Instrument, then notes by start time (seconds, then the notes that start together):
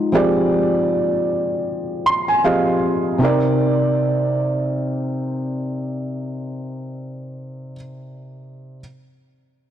felt piano
Already playing: D#5
0.12 F3 C4 G4 G#4 D5
2.06 C6
2.28 G#5
2.44 F3 C4 G4 G#4 D#5 F5
3.18 C3 C4 D#4
3.23 A#4 D5